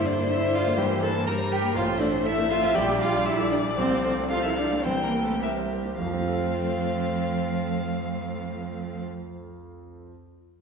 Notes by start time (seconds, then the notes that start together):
Already playing: G2 D3 A#3 C5
0.06 D4 D5
0.19 A#3
0.30 E4 D5 E5
0.43 E5
0.54 F4 D5 F5
0.66 A#3
0.78 G2 E3 G4 G5
0.90 A#3
1.02 A4 A#4 A5
1.15 A#3
1.27 G3 A#4 A#5
1.38 C5
1.51 G4 A#4 G5
1.62 A#3
1.75 A1 A3 F4 C5 F5
1.87 C4
2.00 D4 A4 D5
2.13 C4
2.25 E4 A4 E5
2.38 A#4
2.50 F4 A4 F5
2.62 C4
2.74 A#1 G3 G4 D5 G5
2.88 D4
2.99 F4 G4 F5
3.13 D4
3.25 E4 G4 E5
3.38 A4
3.51 D4 G4 D5
3.65 D4
3.77 C2 F3 C4 C5
3.91 C4
4.04 C4 A4 C5
4.18 C4
4.29 F3 F4 A4 F5
4.43 E4 A#4 E5
4.56 D4 A4 D5
4.72 C4
4.83 C2 E3 C4 C5 G5
5.00 A#3 C4 A#4
5.14 A#4
5.22 A3 A4
5.28 C4
5.40 E3 G3 G4 A#4 E5
5.56 C5
5.71 A#4
5.86 C4
5.98 F2 F3 A3 C4 F5
6.06 F3
6.13 C4
6.20 F4
6.27 A4
6.34 F5